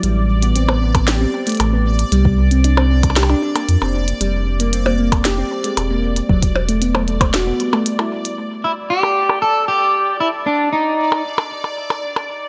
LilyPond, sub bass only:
\new Staff \with { instrumentName = "Sub bass" } { \clef bass \time 4/4 \key e \phrygian \tempo 4 = 115 a,,2~ a,,16 r8. a,,8. r16 | c,2~ c,16 r8. f,16 f,,8 r16 | f,,2~ f,,16 r8. e,,8. r16 | e,,2~ e,,16 r4. r16 |
r1 | r1 | }